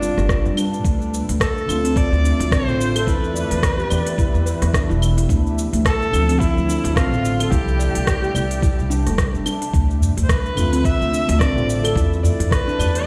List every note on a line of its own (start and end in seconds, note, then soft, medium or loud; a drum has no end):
0.00 0.83 G3 medium
0.00 0.57 D4 medium
0.00 0.86 D4 medium
0.00 0.16 F4 medium
0.00 0.87 D5 medium
0.00 cabasa medium
0.17 0.47 G1 medium
0.17 0.29 G4 medium
0.17 cross-stick soft
0.17 cabasa soft
0.29 kick loud
0.29 cross-stick medium
0.29 cabasa soft
0.45 0.79 G2 medium
0.45 cabasa soft
0.57 0.71 D4 loud
0.57 cabasa medium
0.57 claves medium
0.74 cabasa soft
0.84 1.20 D2 medium
0.84 3.05 D3 medium
0.84 3.05 A3 medium
0.84 1.39 D4 medium
0.84 3.05 F4 medium
0.84 9.70 E5 medium
0.84 kick loud
0.84 open hi-hat soft
0.84 cabasa soft
1.02 cabasa soft
1.14 cabasa medium
1.29 1.62 D2 medium
1.29 open hi-hat medium
1.29 cabasa soft
1.40 1.98 A4 loud
1.40 kick medium
1.40 cross-stick loud
1.40 open hi-hat soft
1.40 cabasa soft
1.58 cabasa soft
1.66 2.04 D2 medium
1.66 2.63 D3 medium
1.66 2.64 C4 medium
1.66 1.83 D4 medium
1.66 cabasa medium
1.66 claves medium
1.70 2.65 F4 loud
1.84 2.23 C4 medium
1.84 open hi-hat medium
1.84 cabasa soft
1.96 2.54 D5 loud
1.96 kick loud
1.96 open hi-hat soft
1.96 cabasa soft
2.12 2.30 D2 medium
2.12 cabasa soft
2.24 2.38 D4 medium
2.24 cabasa medium
2.39 2.67 D2 loud
2.39 2.46 D4 medium
2.39 open hi-hat medium
2.39 cabasa soft
2.52 2.67 C4 medium
2.52 3.07 C5 loud
2.52 kick loud
2.52 cross-stick loud
2.52 open hi-hat soft
2.52 cabasa soft
2.67 3.01 A1 medium
2.67 3.06 D3 medium
2.67 3.06 C4 medium
2.67 3.07 F4 loud
2.67 cabasa soft
2.81 cabasa medium
2.96 3.06 A4 loud
2.96 open hi-hat medium
2.96 cabasa soft
2.96 claves medium
3.07 3.43 E2 medium
3.07 5.27 E3 medium
3.07 5.27 B3 medium
3.07 3.34 E4 loud
3.07 5.27 G4 medium
3.07 4.70 B4 loud
3.07 kick loud
3.07 open hi-hat soft
3.07 cabasa soft
3.24 cabasa soft
3.35 3.44 D5 medium
3.35 cabasa medium
3.51 3.85 E2 medium
3.51 open hi-hat medium
3.51 cabasa soft
3.63 kick loud
3.63 cross-stick loud
3.63 open hi-hat soft
3.63 cabasa soft
3.78 3.89 G4 medium
3.78 cabasa soft
3.90 4.26 E2 medium
3.90 4.00 E3 medium
3.90 4.01 D4 medium
3.90 4.01 G4 medium
3.90 4.17 D5 medium
3.90 cabasa medium
3.90 claves medium
4.07 open hi-hat medium
4.07 cabasa soft
4.18 4.33 E4 medium
4.18 kick loud
4.18 open hi-hat soft
4.18 cabasa soft
4.34 4.52 E2 medium
4.34 cabasa soft
4.46 4.61 B4 medium
4.46 cabasa medium
4.62 4.91 E2 loud
4.62 cross-stick soft
4.62 open hi-hat medium
4.62 cabasa soft
4.74 4.88 D4 medium
4.74 kick loud
4.74 cross-stick loud
4.74 open hi-hat soft
4.74 cabasa soft
4.89 5.23 E1 medium
4.89 5.01 E4 loud
4.89 cabasa soft
5.02 cabasa medium
5.02 claves medium
5.17 5.29 E4 medium
5.17 open hi-hat medium
5.17 cabasa soft
5.29 5.65 D2 medium
5.29 7.50 D3 medium
5.29 7.50 F3 medium
5.29 7.50 A3 medium
5.29 5.84 D4 medium
5.29 kick loud
5.29 open hi-hat soft
5.29 cabasa soft
5.47 cabasa soft
5.58 cabasa medium
5.73 6.07 D2 medium
5.73 open hi-hat medium
5.73 cabasa soft
5.85 6.42 A4 loud
5.85 kick loud
5.85 cross-stick loud
5.85 open hi-hat soft
5.85 cabasa soft
6.02 cabasa soft
6.11 6.49 D2 medium
6.11 7.07 D3 loud
6.11 7.09 F3 loud
6.11 7.08 C4 medium
6.11 6.28 D4 medium
6.11 cabasa medium
6.11 claves medium
6.29 6.67 C4 medium
6.29 open hi-hat medium
6.29 cabasa soft
6.40 6.97 E4 loud
6.40 kick loud
6.40 open hi-hat soft
6.40 cabasa soft
6.56 6.74 D2 medium
6.56 cabasa soft
6.69 6.83 D4 medium
6.69 cabasa medium
6.84 7.12 D2 medium
6.84 6.91 D4 medium
6.84 open hi-hat medium
6.84 cabasa soft
6.95 7.12 C4 medium
6.95 7.52 F4 loud
6.95 kick loud
6.95 cross-stick loud
6.95 open hi-hat soft
6.95 cabasa soft
7.11 7.46 A1 medium
7.11 7.50 D3 medium
7.11 7.50 C4 medium
7.11 7.51 F4 medium
7.11 cabasa soft
7.25 cabasa medium
7.40 7.51 A4 loud
7.40 open hi-hat medium
7.40 cabasa soft
7.40 claves medium
7.50 7.87 C2 loud
7.50 9.72 C3 medium
7.50 9.72 G3 medium
7.50 9.72 D4 medium
7.50 7.78 E4 loud
7.50 9.18 G4 medium
7.50 kick loud
7.50 open hi-hat soft
7.50 cabasa soft
7.68 cabasa soft
7.79 7.88 D5 medium
7.79 cabasa medium
7.95 8.29 C2 medium
7.95 open hi-hat medium
7.95 cabasa soft
8.07 kick loud
8.07 cross-stick loud
8.07 open hi-hat soft
8.07 cabasa soft
8.22 8.34 G4 medium
8.22 cabasa soft
8.34 8.71 C2 medium
8.34 8.44 C3 medium
8.34 8.44 B3 medium
8.34 8.45 E4 medium
8.34 8.61 D5 medium
8.34 cabasa medium
8.34 claves medium
8.51 open hi-hat soft
8.51 cabasa soft
8.62 8.77 E4 medium
8.62 kick loud
8.62 open hi-hat soft
8.62 cabasa soft
8.79 9.08 C2 medium
8.79 cabasa soft
8.90 9.05 D4 loud
8.90 cabasa medium
9.06 9.15 G1 medium
9.06 9.17 A4 medium
9.06 cross-stick soft
9.06 open hi-hat soft
9.06 cabasa soft
9.18 kick loud
9.18 cross-stick medium
9.18 open hi-hat soft
9.18 cabasa soft
9.34 9.42 G1 medium
9.34 cabasa soft
9.46 9.60 D4 loud
9.46 cabasa medium
9.46 claves medium
9.62 open hi-hat medium
9.62 cabasa soft
9.73 10.09 D2 medium
9.73 11.94 D3 medium
9.73 11.94 A3 medium
9.73 10.28 D4 medium
9.73 11.94 F4 medium
9.73 13.07 E5 medium
9.73 kick loud
9.73 open hi-hat soft
9.73 cabasa soft
9.91 cabasa soft
10.01 udu medium
10.01 cabasa medium
10.17 10.51 D2 medium
10.17 open hi-hat medium
10.17 udu medium
10.17 cabasa soft
10.23 10.31 C5 medium
10.29 10.86 B4 loud
10.29 kick loud
10.29 cross-stick loud
10.29 open hi-hat soft
10.29 cabasa soft
10.46 cabasa soft
10.55 10.93 D2 medium
10.55 11.51 D3 medium
10.55 11.52 C4 medium
10.55 10.72 D4 medium
10.55 udu medium
10.55 cabasa medium
10.55 claves medium
10.59 11.53 F4 loud
10.73 11.11 C4 medium
10.73 open hi-hat medium
10.73 cabasa soft
10.85 11.41 E5 loud
10.85 kick loud
10.85 open hi-hat soft
10.85 cabasa soft
11.00 11.19 D2 medium
11.00 cabasa soft
11.12 11.27 D4 medium
11.12 cabasa medium
11.28 11.56 D2 loud
11.28 11.35 D4 medium
11.28 open hi-hat medium
11.28 cabasa soft
11.39 11.56 C4 medium
11.39 11.95 D5 loud
11.39 kick loud
11.39 cross-stick medium
11.39 open hi-hat soft
11.39 cabasa soft
11.55 11.90 A1 medium
11.55 11.94 D3 medium
11.55 11.95 C4 medium
11.55 11.95 F4 medium
11.55 cabasa soft
11.70 cabasa medium
11.84 11.95 A4 loud
11.84 open hi-hat medium
11.84 cabasa soft
11.84 claves medium
11.95 12.31 E2 loud
11.95 13.07 E3 medium
11.95 13.07 B3 medium
11.95 12.23 E4 loud
11.95 13.07 G4 medium
11.95 kick loud
11.95 open hi-hat soft
11.95 cabasa soft
12.13 cabasa soft
12.23 12.33 D5 medium
12.23 udu medium
12.23 cabasa medium
12.39 12.73 E2 medium
12.39 open hi-hat medium
12.39 udu medium
12.39 cabasa soft
12.51 13.07 B4 loud
12.51 kick loud
12.51 cross-stick medium
12.51 open hi-hat soft
12.51 cabasa soft
12.68 12.79 D4 loud
12.68 cabasa soft
12.78 13.07 E2 medium
12.78 12.88 E3 medium
12.78 12.89 D4 medium
12.78 12.89 G4 medium
12.78 13.06 D5 medium
12.78 udu medium
12.78 cabasa medium
12.78 claves medium
12.95 open hi-hat medium
12.95 cabasa soft